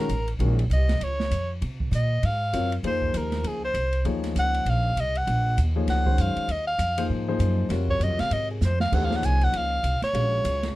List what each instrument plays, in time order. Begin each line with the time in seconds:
Already playing: soprano saxophone A#4
0.09 upright bass A1, hi-hat pedal, ride
0.28 ride
0.39 upright bass A#1, grand piano D#3 G#3 C#4 F#4 A#4, ride
0.59 ride
0.70 upright bass C2, soprano saxophone D#5, hi-hat pedal, ride
0.89 snare, ride
1.00 upright bass C#2, soprano saxophone C#5, ride
1.20 snare
1.31 upright bass F2, hi-hat pedal, ride
1.62 upright bass C3, ride
1.80 kick
1.91 upright bass A#2, soprano saxophone D#5, hi-hat pedal, ride
2.23 upright bass G#2, soprano saxophone F5, ride
2.53 upright bass F#2, grand piano F#3 C4 F4 A#4 C#5, hi-hat pedal, ride
2.72 ride
2.83 upright bass F2, grand piano F3 A#3 D#4 G#4 C5, ride
2.87 soprano saxophone C5
3.02 kick
3.14 upright bass D#2, soprano saxophone A#4, hi-hat pedal, ride
3.32 snare, ride
3.43 upright bass C#2, ride
3.48 soprano saxophone G#4
3.65 soprano saxophone C5
3.74 upright bass C2, hi-hat pedal, ride
3.93 ride
4.05 upright bass D#2, grand piano F3 A#3 D#4 G#4 C#5, ride
4.24 snare, ride
4.35 upright bass C#2, hi-hat pedal, ride
4.39 soprano saxophone F#5
4.54 ride
4.65 upright bass A#1, ride
4.70 soprano saxophone F5
4.96 upright bass C2, hi-hat pedal, ride
5.01 soprano saxophone D#5
5.15 soprano saxophone F#5, ride
5.27 upright bass A#1, ride
5.57 upright bass D#2, hi-hat pedal, ride
5.76 grand piano F3 A#3 D#4 G#4 C#5
5.88 upright bass C#2, soprano saxophone F#5, snare, ride
6.06 grand piano D#3 G#3 C#4 F#4 C5, kick
6.18 upright bass F#2, soprano saxophone F5, hi-hat pedal, ride
6.36 muted upright bass stroke, ride
6.48 upright bass D#2, ride
6.52 soprano saxophone D#5
6.67 soprano saxophone F5
6.78 upright bass F2, hi-hat pedal, ride
6.97 grand piano F3 A#3 D#4 G#4 C5, ride
7.09 upright bass G#2
7.28 grand piano F3 A#3 D#4 G#4 C5
7.39 upright bass F#2, hi-hat pedal, ride
7.69 upright bass F2, grand piano C3 F4 F#4 A#4 C#5, snare, ride
7.89 soprano saxophone C#5, kick
8.00 upright bass F#2, hi-hat pedal, ride
8.04 soprano saxophone D#5
8.10 upright bass F2
8.19 upright bass C2, soprano saxophone F5, snare, ride
8.31 upright bass G#2, soprano saxophone D#5, ride
8.51 soprano saxophone G#4
8.61 upright bass F2, snare, hi-hat pedal
8.65 soprano saxophone C5
8.80 soprano saxophone F5, snare
8.92 upright bass D#2, grand piano E3 A3 D4 G4 C5, soprano saxophone F#5, kick, crash
9.04 soprano saxophone F5
9.10 grand piano F3 A#3 D#4 G#4 C#5, snare
9.16 soprano saxophone F#5
9.23 upright bass C2, soprano saxophone G#5, hi-hat pedal, ride
9.41 soprano saxophone F#5, ride
9.53 upright bass C#2, ride
9.57 soprano saxophone F5
9.83 upright bass C2, hi-hat pedal, ride
10.01 soprano saxophone C#5, muted upright bass stroke, snare, ride
10.13 upright bass A#1, grand piano G#3 C#4 F#4 C#5 F5, ride
10.44 upright bass C#2, hi-hat pedal, ride
10.63 snare, ride